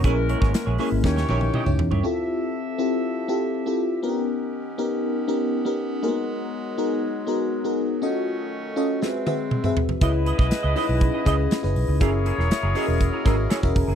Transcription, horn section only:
\new Staff \with { instrumentName = "Horn section" } { \time 4/4 \key dis \minor \tempo 4 = 120 <e cis' ais'>4. r8 <ais g' cis''>4. r8 | r1 | r1 | r1 |
r1 | <gis e' b'>2.~ <gis e' b'>8 r8 | <ais gis' cis''>2.~ <ais gis' cis''>8 r8 | }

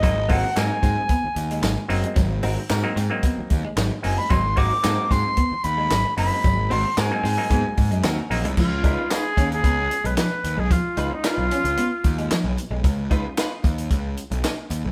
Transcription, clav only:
\new Staff \with { instrumentName = "Clav" } { \time 4/4 \key des \major \tempo 4 = 112 <ges bes c' ees'>16 r16 <ges bes c' ees'>16 r16 <ges bes c' ees'>4~ <ges bes c' ees'>16 r4 r16 <ges bes c' ees'>8~ | <ges bes c' ees'>8 r8. <ges bes c' ees'>16 r16 <ges bes c' ees'>4 r8. <ges bes c' ees'>16 r16 | <ges bes c' ees'>16 r16 <ges bes c' ees'>16 r16 <ges bes ces' c' ees'>4~ <ges bes ces' c' ees'>16 r4 r16 <ges bes c' ees'>8~ | <ges bes c' ees'>8 r8. <ges bes c' ees'>16 r16 <ges bes c' ees'>4 r8. <ges bes c' ees'>16 r16 |
r1 | r1 | r1 | }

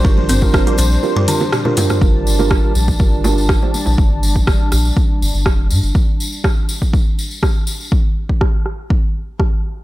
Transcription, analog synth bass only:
\new Staff \with { instrumentName = "Analog synth bass" } { \clef bass \time 4/4 \key g \minor \tempo 4 = 122 g,,4~ g,,16 r16 bes,,16 r2 r16 | g,,4~ g,,16 r16 bes,,16 r16 g,,4~ g,,16 r8 bes,,16 | g,,4~ g,,16 r16 bes,,16 r8. g,,16 g,,16 f,,8 g,16 g,,16 | r1 |
r1 | }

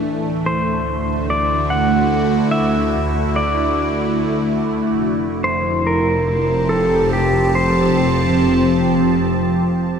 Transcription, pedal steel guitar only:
\new Staff \with { instrumentName = "Pedal steel guitar" } { \time 3/4 \key d \minor \tempo 4 = 72 r8 c''4 d''8 fis''4 | e''4 d''4 r4 | r8 c''8 bes'4 a'8 g'8 | c''2 r4 | }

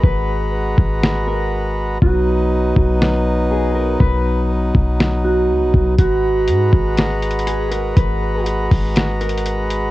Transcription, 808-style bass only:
\new Staff \with { instrumentName = "808-style bass" } { \clef bass \time 4/4 \key gis \minor \tempo 4 = 121 gis,,4. gis,,2~ gis,,8 | b,,4. b,,2~ b,,8 | b,,4. b,,4. cis,16 b,,16 b,,8 | gis,,4 gis,8 gis,,2~ gis,,8 |
gis,,4. gis,,2~ gis,,8 | }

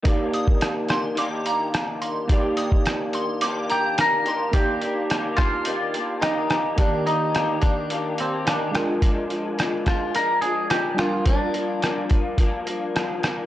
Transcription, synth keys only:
\new Staff \with { instrumentName = "Synth keys" } { \time 4/4 \key ees \major \tempo 4 = 107 <bes ees' g' d''>1 | <bes ees' g' d''>2.~ <bes ees' g' d''>8 r8 | <bes ees' g' d''>1 | <ees bes g' d''>2.~ <ees bes g' d''>8 <aes d' f' bes'>8~ |
<aes d' f' bes'>2.~ <aes d' f' bes'>8 <g d' f' bes'>8~ | <g d' f' bes'>2.~ <g d' f' bes'>8 r8 | }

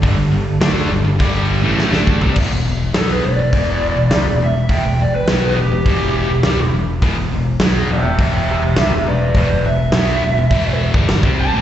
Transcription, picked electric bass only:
\new Staff \with { instrumentName = "Picked electric bass" } { \clef bass \time 4/4 \key e \minor \tempo 4 = 103 g,,16 g,,16 g,,8 d,8 g,,16 g,,16 g,,8. a,,8 d,8 c,16 | e,,16 e,,16 e,,8 b,,8 e,,16 e,,16 e,,8. e,,16 c,16 e,,16 e,,8 | e,,16 e,,16 e,,8 b,,8 e,,16 e,,16 e,,8. e,,16 c,16 e,,16 e,,8 | e,,16 e,,16 e,,8 b,,8 e,,16 e,,16 e,,8. e,,16 c,16 e,,16 e,,8 |
e,,16 e,,16 e,,8 b,,8 e,,16 e,,16 e,,8. g,,8 c,8 a,,16 | }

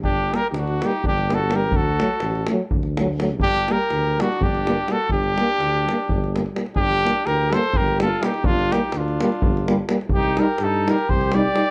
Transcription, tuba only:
\new Staff \with { instrumentName = "Tuba" } { \clef bass \time 7/8 \key g \minor \tempo 4 = 126 g,,4 d,4 g,,4. | d,4 a,,4 d,4. | g,,4 d,4 g,,4. | g,,4 d,4 g,,4. |
g,,4 d,4 g,,4. | g,,4 d,4 g,,4. | c,4 g,4 c,4. | }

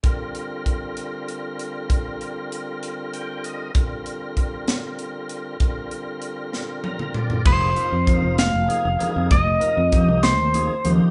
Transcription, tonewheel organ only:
<<
  \new Staff \with { instrumentName = "Tonewheel organ" } { \time 6/8 \key c \minor \tempo 4. = 65 r2. | r2 g''8 ees''8 | r2. | r2 bes''8 d''8 |
r2. | r2. | }
  \new Staff \with { instrumentName = "Tonewheel organ" } { \time 6/8 \key c \minor <d g c' f' bes'>2.~ | <d g c' f' bes'>2. | <d g c' f' bes'>2. | <d g c' f' bes'>2. |
<c f bes ees' aes'>8 <c f bes ees' f'>8 <c f bes ees' f'>8 r8 <c f bes ees' aes'>8 <c f bes ees' aes'>8 | r8 <c f bes ees' bes'>8 <c f bes ees' g'>8 r8 <c f bes ees' aes'>8 <c f bes ees' g'>8 | }
>>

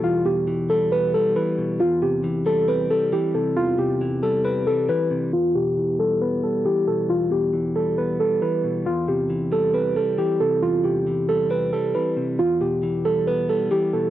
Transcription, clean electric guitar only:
\new Staff \with { instrumentName = "Clean electric guitar" } { \clef bass \time 4/4 \key e \phrygian \tempo 4 = 136 <e, b, e g b>8 b,8 e8 g8 b8 g8 e8 b,8 | e,8 c8 e8 g8 c'8 g8 e8 c8 | e,8 c8 e8 g8 c'8 g8 e8 c8 | e,8 b,8 e8 g8 b8 g8 e8 b,8 |
e,8 b,8 e8 g8 b8 g8 e8 b,8 | e,8 c8 e8 g8 c'8 g8 e8 c8 | e,8 c8 e8 g8 c'8 g8 e8 c8 | e,8 b,8 e8 g8 b8 g8 e8 b,8 | }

